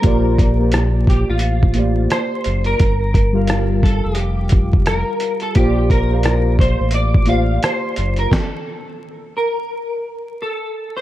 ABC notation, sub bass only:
X:1
M:4/4
L:1/16
Q:"Swing 16ths" 1/4=87
K:Bb
V:1 name="Sub bass" clef=bass
B,,,6- B,,, A,,,4- A,,, z2 _G,,,2 | G,,,6- G,,, F,,,6 z3 | B,,,6- B,,, A,,,4- A,,, z2 _G,,,2 | z16 |]